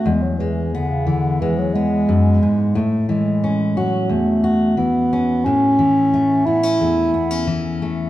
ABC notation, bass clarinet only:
X:1
M:4/4
L:1/16
Q:1/4=89
K:A
V:1 name="Bass clarinet" clef=bass
G, F, E,2 D, C, D,2 E, F, G,6 | A,2 G,4 F,2 A,4 B,4 | C6 E8 z2 |]